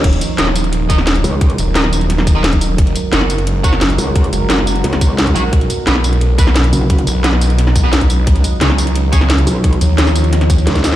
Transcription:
<<
  \new Staff \with { instrumentName = "Distorted electric guitar" } { \time 4/4 \key ees \minor \tempo 4 = 175 r4 <ees' bes' ees''>16 r4 r16 <ees' bes' ees''>16 r4 r16 | r4 <ees' bes' ees''>16 r4. <ees' bes' ees''>16 r4 | r4 <ges' des'' ges''>16 r4 r16 <ges' des'' ges''>16 r4 r16 | r4 <ges' des'' ges''>16 r2 r16 <ges' des'' ges''>16 r16 |
r4 <b fis' b'>16 r4 r16 <b fis' b'>16 r4 r16 | r4 <b fis' b'>16 r4. <b fis' b'>16 r4 | r4 <des' aes' des''>16 r4 r16 <des' aes' des''>16 r4 r16 | r4 <des' aes' des''>16 r2 r8. | }
  \new Staff \with { instrumentName = "Ambient pad" } { \time 4/4 \key ees \minor << { <ges bes'>1~ | <ges bes'>1 | <aes bes'>1~ | <aes bes'>1 |
<fis b'>1~ | <fis b'>1 | <f des''>1~ | <f des''>1 | } \\ { dis'1~ | dis'1 | ges'1~ | ges'1 |
dis'1~ | dis'1~ | dis'1~ | dis'1 | } >> }
  \new Staff \with { instrumentName = "Wobble bass" } { \clef bass \time 4/4 \key ees \minor r2. r8 des,8~ | des,8 r2. r8 | r2. r8 des,8~ | des,8 r4. des,4. r8 |
r2. r8 fis,,8~ | fis,,8 r2. r8 | r2. r8 ces,8~ | ces,8 r2 r8 des,8 ees,8 | }
  \new Staff \with { instrumentName = "Detuned saw bass" } { \clef bass \time 4/4 \key ees \minor ees,,8 r8 ees,,2~ ees,,8 r8 | r8 ees,,2.~ ees,,8 | ges,,8 r8 ges,,2~ ges,,8 r8 | r8 ges,,4. r4. bes,,8 |
b,,8 r8 b,,2~ b,,8 r8 | r8 b,,2.~ b,,8 | des,8 r8 des,2~ des,8 r8 | r8 ees,2~ ees,8 r4 | }
  \new DrumStaff \with { instrumentName = "Drums" } \drummode { \time 4/4 <cymc hh bd>16 hh16 <hh tamb>8 <hh sn>16 sn16 <hh tamb>16 hh16 hh8 <hh bd tamb>16 sn16 <hh sn>16 hh16 <hho tamb>8 | <hh bd>16 hh16 <hh tamb>8 <hh sn>16 sn16 <hh tamb>16 hh16 <hh sn>16 sn16 <hh bd tamb>8 <hh sn>16 <hh bd>16 <hho tamb>8 | <hh bd>16 hh16 <hh tamb>8 <hh sn>16 sn16 <hh tamb>16 hh16 hh8 <hh bd tamb>16 sn16 <hh sn>16 hh16 <hho tamb>8 | <hh bd>16 hh16 <hh tamb>8 <hh sn>16 sn16 <hh tamb>16 hh16 <hh sn>16 <hh sn>16 <hh bd tamb>8 <hh sn>16 <hh bd>16 <hho tamb>8 |
<hh bd>16 hh16 <hh tamb>8 <hh sn>16 sn16 <hh tamb>16 hh16 hh8 <hh bd tamb>16 sn16 <hh sn>16 hh16 <hho tamb>8 | <hh bd>16 hh16 <hh tamb>8 <hh sn>16 sn16 <hh tamb>16 hh16 <hh sn>16 sn16 <hh bd tamb>8 <hh sn>16 <hh bd>16 <hho tamb>8 | <hh bd>16 hh16 <hh tamb>8 <hh sn>16 sn16 <hh tamb>16 hh16 hh8 <hh bd tamb>16 sn16 <hh sn>16 hh16 <hho tamb>8 | <hh bd>16 hh16 <hh tamb>8 <hh sn>16 <sn tamb>16 <hh tamb>16 hh16 <hh sn>16 <hh sn>16 <hh bd tamb>16 tamb16 <hh sn>16 <hh bd sn>16 <hho sn tamb>16 sn16 | }
>>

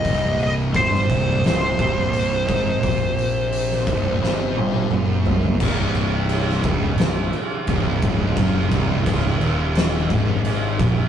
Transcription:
<<
  \new Staff \with { instrumentName = "Lead electric guitar" } { \time 4/4 \key c \minor \tempo 4 = 86 ees''8 ees''8 c''4 c''2~ | c''2. r4 | r1 | r1 | }
  \new Staff \with { instrumentName = "Tonewheel organ" } { \time 4/4 \key c \minor <c c' g'>1~ | <c c' g'>1 | <c d' g'>1~ | <c d' g'>1 | }
  \new Staff \with { instrumentName = "Distorted electric guitar" } { \clef bass \time 4/4 \key c \minor c,4 g,8 c,8 des,8 c,4 aes,8 | bes,4. c,8 g,4 fis,4 | c,4. des,8 c,8 r8 c,8 des,8 | fis,8 c,8 des,8 ees,4 aes,4 bes,8 | }
  \new Staff \with { instrumentName = "Distorted electric guitar" } { \clef bass \time 4/4 \key c \minor c,4 g,8 c,8 des,8 c,4 aes,8 | bes,4. c,8 g,4 fis,4 | c,4. des,8 c,8 r8 c,8 des,8 | fis,8 c,8 des,8 ees,4 aes,4 bes,8 | }
  \new Staff \with { instrumentName = "Fingered electric bass" } { \clef bass \time 4/4 \key c \minor c,,4 g,,8 c,,8 des,,8 c,,4 aes,,8 | bes,,4. c,,8 g,,4 fis,,4 | c,,4. des,,8 c,,8 r8 c,,8 des,,8 | fis,,8 c,,8 des,,8 ees,,4 aes,,4 bes,,8 | }
  \new DrumStaff \with { instrumentName = "Drums" } \drummode { \time 4/4 <hho bd>8 hho8 <hho bd>16 sn16 <hho bd>8 <hho sn>8 <hho bd>8 hho8 <hho bd>8 | <hho bd>8 hho8 hho16 sn16 <hho bd>8 sn8 tommh16 tommh16 toml8 tomfh16 tomfh16 | <cymc bd>8 cymc8 cymc16 sn16 <cymc bd>8 <cymc sn>8 cymc8 <cymc bd>8 <cymc bd>8 | <cymc bd>8 <cymc bd>8 <cymc bd>8 cymc8 <cymc sn>8 <cymc bd>8 cymc8 <cymc bd>8 | }
>>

